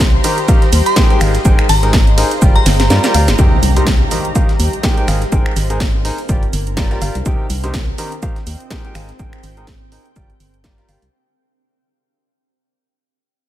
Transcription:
Already playing: C2 G4 C5 D#5 A#5 C6
0.00 kick, snare, closed hi-hat, shaker
0.24 D#3 D#4 G4 A#4 C5 A#5, open hi-hat, ride, shaker
0.38 closed hi-hat
0.48 D#3 D#4 G4 A#4 C5 F5, kick, closed hi-hat, shaker
0.62 snare, closed hi-hat
0.73 D#2, open hi-hat, ride, shaker
0.86 C6, closed hi-hat
0.96 G#3 D#4 G4 A#4 C5 G5, kick, snare, closed hi-hat, shaker
1.10 G#3 D#4 G4 A#4 C5 G5, closed hi-hat
1.21 G#1 G#3 D#4 G#4 A#4 C5 F5, finger snap, snare, open hi-hat, ride, shaker
1.35 snare, closed hi-hat
1.45 G#1 G#3 D#4 G#4 A#4 C5 G5, kick, closed hi-hat, shaker
1.53 C5 G5
1.59 finger snap, closed hi-hat
1.69 G#1 A#5, snare, open hi-hat, ride, shaker
1.76 A#5
1.83 G#3 D#4 G#4 A#4 C5 A#5, closed hi-hat
1.93 kick, snare, closed hi-hat, shaker
2.07 closed hi-hat
2.18 D#4 G#4 A#4 C5 A#5, open hi-hat, ride
2.31 closed hi-hat
2.42 G1 G3 F4 G4 A#4 D5 G5, kick, closed hi-hat, shaker
2.56 A#5, closed hi-hat
2.66 G1, snare, open hi-hat, ride, shaker
2.80 snare, closed hi-hat
2.90 G2 G3 F4 G4 A#4 D5 A#5, snare, closed hi-hat, shaker
3.04 G3 F4 G4 A#4 D5 A#5, snare, closed hi-hat, shaker
3.14 D2 F4 G4 A#4 D5 F5, open hi-hat, ride
3.28 G1, snare, closed hi-hat, shaker
3.39 C2 C3 D#4 G4 A#4 C5 G5, kick, closed hi-hat, impact, shaker
3.63 C2, open hi-hat, shaker
3.72 C5
3.76 C3 D#4 G4 A#4 C5 C6, closed hi-hat
3.87 kick, snare, closed hi-hat, shaker
4.11 D#3 D#4 G4 A#4 C5 A#5, open hi-hat, shaker
4.25 closed hi-hat
4.35 D#3 D#4 G4 A#4 C5 F5, kick, closed hi-hat, shaker
4.49 snare, closed hi-hat
4.60 D#2, open hi-hat, shaker
4.73 closed hi-hat
4.83 G#3 D#4 G4 A#4 C5 G5, kick, snare, closed hi-hat, shaker
4.97 G#3 D#4 G4 A#4 C5 G5, closed hi-hat
5.08 G#1 G#3 C4 D#4 G#4 A#4 C5 F5, finger snap, snare, open hi-hat, shaker
5.16 A#4
5.22 snare, closed hi-hat
5.32 G#1 G#3 D#4 G#4 A#4 C5 G5, kick, closed hi-hat, shaker
5.46 finger snap
5.56 G#1, snare, open hi-hat, shaker
5.70 G#3 D#4 G#4 A#4 C5 A#5, closed hi-hat
5.80 kick, snare, closed hi-hat, shaker
6.05 D#4 G#4 A#4 C5 A#5, open hi-hat
6.18 closed hi-hat
6.29 G1 G3 F4 G4 A#4 D5 G5, kick, closed hi-hat, shaker
6.43 closed hi-hat
6.53 G1, open hi-hat, shaker
6.67 closed hi-hat
6.73 G5, snare
6.77 G3 F4 G4 A#4 D5 A#5, kick, snare, closed hi-hat, shaker
6.91 G3 F4 G4 A#4 D5 A#5, snare, closed hi-hat
7.02 G1 F4 G4 A#4 D5 F5, open hi-hat, shaker
7.15 C2, closed hi-hat
7.26 C2 C3 C4 D#4 G4 A#4 C5 G5, kick, closed hi-hat, shaker
7.50 C2, open hi-hat, shaker
7.59 D#5
7.64 C3 D#4 G4 A#4 C5 C6, closed hi-hat
7.74 kick, snare, closed hi-hat, shaker
7.98 D#3 D#4 G4 A#4 C5 A#5, open hi-hat, shaker
8.12 closed hi-hat
8.20 D#3 D#4 F4 G4 A#4 C5 F5, kick, closed hi-hat, shaker
8.36 snare, closed hi-hat
8.47 D#2, open hi-hat, shaker
8.60 closed hi-hat
8.71 G#3 D#4 G4 A#4 C5 G5, kick, snare, closed hi-hat, shaker
8.85 G#3 D#4 G4 A#4 C5 G5, closed hi-hat
8.95 G#1 G#3 D#4 G#4 A#4 C5 F5, finger snap, snare, open hi-hat, shaker
9.09 snare, closed hi-hat
9.19 G#1 G#3 D#4 G#4 A#4 C5 G5, kick, closed hi-hat, shaker
9.29 A#4, finger snap, closed hi-hat
9.44 G#1, snare, open hi-hat, shaker
9.57 G#3 D#4 G#4 A#4 C5 A#5, closed hi-hat
9.67 kick, snare, closed hi-hat, shaker
9.92 D#4 G#4 A#4 C5 A#5, open hi-hat
10.06 closed hi-hat
10.16 G1 G3 F4 G4 A#4 D5 G5, kick, closed hi-hat, shaker
10.30 closed hi-hat
10.40 G1, open hi-hat, shaker
10.54 closed hi-hat
10.64 G3 F4 G4 A#4 D5 A#5, kick, snare, closed hi-hat, shaker
10.78 G3 F4 G4 A#4 D5 A#5, snare, closed hi-hat
10.89 G1 G3 F4 G4 A#4 D5 F5, open hi-hat, shaker
11.02 C2, closed hi-hat

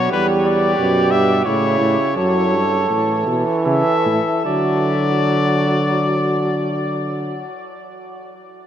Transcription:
Already playing: B2 F#3 F#4 C#5
0.11 E2 G3 G4 B4
0.44 D5
0.78 F#2 B2
1.11 G2 E5
1.45 A2 C#3 E4 C#5
1.81 A2
2.16 F#2 F#3 A4 C#5
2.53 G2
2.89 A2 E3
3.27 B2
3.66 C#3 A4 E5
4.05 A2
4.46 D3 F#3 F#4 D5

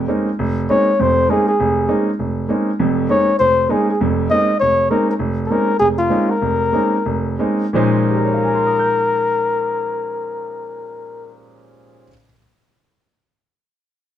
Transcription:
0.08 G#3 A#3 C4 C#4 D#4
0.39 F1
0.70 G#3 A#3 C4 C#4 D#4 C#5
0.99 F1 F2 C5
1.29 G#3 A#3 C4 C#4 D#4 G#4
1.48 G#4
1.60 F1
1.88 G#3 A#3 C4 C#4 D#4
2.19 F1
2.49 G#3 A#3 C4 C#4 D#4
2.79 F1 F2
3.09 G#3 A#3 C4 C#4 D#4 C#5
3.39 F1 C5
3.69 G#3 A#3 C4 C#4 D#4 G#4
3.90 G#4
4.01 F1 F2
4.30 G#3 A#3 C4 C#4 D#4 D#5
4.60 F1 C#5
4.90 G#3 A#3 C4 C#4 D#4 A#4
5.10 A#4
5.19 F1
5.46 A4
5.50 G#3 A#3 C4 C#4 D#4 A#4
5.79 F1 G#4
5.99 F4
6.10 G#3 A#3 C4 C#4 D#4
6.30 A#4
6.42 F1
6.72 G#3 A#3 C4 C#4 D#4
7.06 F1
7.39 G#3 A#3 C4 C#4 D#4
7.73 A#2 F3 G#3 C#4 D#4 A#4 C5
8.09 G4
8.17 A#4
8.25 C#5
8.34 F5
8.44 G#5
8.55 C6
8.66 D#6
8.79 G6

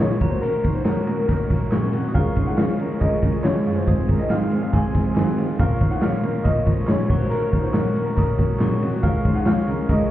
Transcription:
Already playing: F3 A#3 F4 A#4 C#5 C6
0.00 A#2 C#4 G#4 C#5
0.10 A#2 F3 A#3 C#4 F4
0.20 A#2 F#3 A#3 C#4 F#4 A#4 C#5 A#5, kick, open hi-hat, ride
0.30 C5
0.41 C#4 A#4, hi-hat pedal, ride
0.64 A#2 D#4 C5, kick, ride
0.75 A#2 F#3 A#3 C#4 F#4 C5
0.85 A#2 F#4 A#4 C#5, snare, clap, ride
0.97 A#2 F#3 A#3 C#4 F#4
1.07 A#3 C#4 A#4, ride
1.17 A#4
1.27 A#2 F#3 A#3 C#4 A#4, kick, clap, ride
1.31 C#4 F#4
1.50 A#2 F#3 A#3 C#4 F#4, kick, snare, ride
1.72 A#2 C#4 G#4 C#6, snare, clap, ride
1.83 A#2 F#3 A#3 C#4 F#4
1.93 C3 A#3 F#4, open hi-hat, ride
2.08 D#6
2.14 C#3 F3 G#3 C#4 F4 G#4 A#4 C#5 F5 C#6, kick, hi-hat pedal, ride
2.36 C#3 D#4 C5, kick, ride
2.47 C#3 F3 G#3 C#4 F4 F#5
2.57 C#3 F4 C#5 F5, snare, clap, ride
2.69 C#3 F3 G#3 C#4 F4
2.79 C#4 A#4, ride
3.00 C#3 F3 G#3 C#4 F4 A#4 D#5, kick, clap, ride
3.23 C#3 F3 G#3 C#4 F4, kick, ride
3.43 C#3 C#4 G#4 C#5, snare, clap, ride
3.54 C#3 F3 G#3 C#4 F4
3.66 F#2 G#3 F4, open hi-hat, ride
3.76 C5
3.86 G#2 F3 G#3 C4 F4 G#4 C5 D#6, kick, hi-hat pedal, ride
4.09 G#2 C#4 A#4, kick, ride
4.19 G#2 D#3 F3 G#3 C4 F4 D#5
4.30 G#2 D#4 C5 F5, snare, clap, ride
4.40 G#2 D#3 F3 G#3 C4 F4
4.51 G#3 C4 G#4, ride
4.62 F5
4.72 G#2 F3 G#3 C4 F4 G#4 G#5 C6, kick, clap, ride
4.94 G#2 D#3 F3 G#3 C4 F4, kick, snare, ride
5.16 G#2 C4 F#4, snare, clap, ride
5.27 G#2 D#3 F3 G#3 C4 F4
5.38 G#2 G#3 F4, open hi-hat, ride
5.58 A#2 F3 A#3 C#4 F4 A#4 C#5 F5 C#6, kick, hi-hat pedal, ride
5.81 A#2 D#4 C5, kick, ride
5.91 A#2 F3 A#3 C#4 F4 F#5
6.02 A#2 F4 C#5 F5, snare, clap, ride
6.12 A#2 F3 A#3 C#4 F4
6.23 A#3 C#4 A#4, ride
6.44 A#2 F3 A#3 C#4 F4 A#4 D#5, kick, clap, ride
6.67 A#2 F3 A#3 C#4 F4, kick, ride
6.87 A#2 C#4 G#4 C#5, snare, clap, ride
6.99 A#2 F3 A#3 C#4 F4
7.08 A#2 F#3 A#3 C#4 F#4 A#4 C#5 C#6, kick, crash
7.19 C5
7.30 C#4 A#4, hi-hat pedal, ride
7.53 A#2 D#4 C5, kick, ride
7.61 F#3 A#3 C#4 F#4 C5
7.65 A#2
7.73 A#2 F#4 A#4 C#5, snare, clap, ride
7.85 A#2 F#3 A#3 C#4 F#4
7.96 A#3 C#4 A#4, ride
8.05 A#4
8.16 A#2 F#3 A#3 C#4 F#4 A#4 D#6, kick, clap, ride
8.38 A#2 F#3 A#3 C#4 F#4, kick, ride
8.59 A#2 C#4 G#4 C#6, snare, clap, ride
8.70 A#2 F#3 A#3 C#4 F#4
8.82 C3 A#3 F#4, open hi-hat, ride
9.02 C#2 F3 G#3 C#4 F4 G#4 A#4 C#5 F5 C#6, kick, hi-hat pedal, ride
9.25 C#2 D#4 C5, kick, ride
9.35 C#3 F3 G#3 C#4 F4 F#5
9.46 C#2 F4 C#5 F5, snare, clap, ride
9.56 C#3 F3 G#3 C#4 F4
9.67 C#3 C#4 A#4, ride
9.88 C#2 F3 G#3 C#4 F4 A#4 D#5, kick, clap, ride

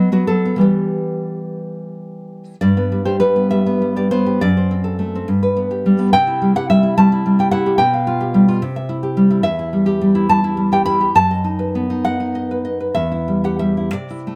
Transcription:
Already playing: F#3 B3 D#5
0.12 F#3 B3 F#4
0.27 F#3 B3 A4
0.45 B3
0.56 E3 G3 B3
0.61 G4
2.61 G2 D5
2.77 B3
2.92 G3
3.05 G4 C5
3.20 G3 B4
3.36 B3
3.51 G3 E5
3.66 B3
3.82 G3
3.96 G4 D5
4.11 B3 C5
4.26 G4
4.41 F#2 D5
4.57 C5
4.71 C4
4.84 A4
4.99 A3
5.15 C4
5.28 G2
5.43 B4
5.57 B3
5.71 G4
5.86 G3
5.99 B3
6.13 C3 G5
6.27 E4
6.42 G3
6.56 G4 F#5
6.70 G3 E5
6.83 E4
6.97 G3 A5
7.12 E4
7.26 G3
7.39 G4 G5
7.51 E4 F#5
7.66 G4
7.78 B2 G5
7.94 F5
8.07 F4
8.21 G4
8.34 G3
8.48 F4
8.62 C3
8.76 E5
8.89 E4
9.03 G4
9.17 G3
9.30 E4
9.43 E2 E5
9.59 E4
9.73 G3
9.86 G4
10.01 G3
10.15 E4
10.29 G3 A5
10.44 E4
10.57 G3
10.72 G4 G5
10.86 E4 B5
11.01 G4
11.15 F#2 A5
11.31 D#5
11.44 D#4
11.59 B4
11.75 B3
11.90 D#4
12.05 D#5 F#5
12.20 D#4
12.35 D#5
12.51 B4
12.65 D#5
12.80 B4
12.95 E2 E5
13.12 E4
13.28 G3
13.44 G4 F#5
13.59 G3 E5
13.77 E4
13.93 C3 D5
14.10 E4
14.27 A3

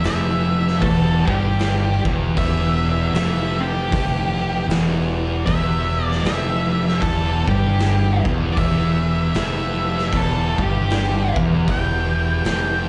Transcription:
Already playing: E3 B3 G4
0.04 F1 F2 E5, snare, open hi-hat
0.68 snare
0.81 E1 E2 A4, kick, open hi-hat
1.25 G1 G2 G4, kick
1.59 snare, open hi-hat
2.05 E1 E2, kick
2.36 E1 E2 E5, kick, open hi-hat
3.14 F1 F2 E5, snare, open hi-hat
3.60 G4
3.92 F1 F2, kick, open hi-hat
4.68 E1 E2, snare, open hi-hat
5.46 E1 E2 E5, kick, open hi-hat
6.05 D5
6.11 snare
6.24 F1 F2 E5, snare, open hi-hat
6.88 snare
7.01 E1 E2 A4, kick, open hi-hat
7.48 G1 G2 G4, kick
7.79 snare, open hi-hat
8.25 E1 E2, kick
8.52 D5
8.57 E1 E2 E5, kick, open hi-hat
9.34 F1 F2 E5, snare, open hi-hat
9.98 snare
10.12 E1 E2 A4, kick, open hi-hat
10.58 G1 G2, kick
10.63 G4
10.90 snare, open hi-hat
11.36 E1 E2, kick
11.68 E1 E2 G5, kick, open hi-hat
12.45 F1 F2 G5, snare, open hi-hat

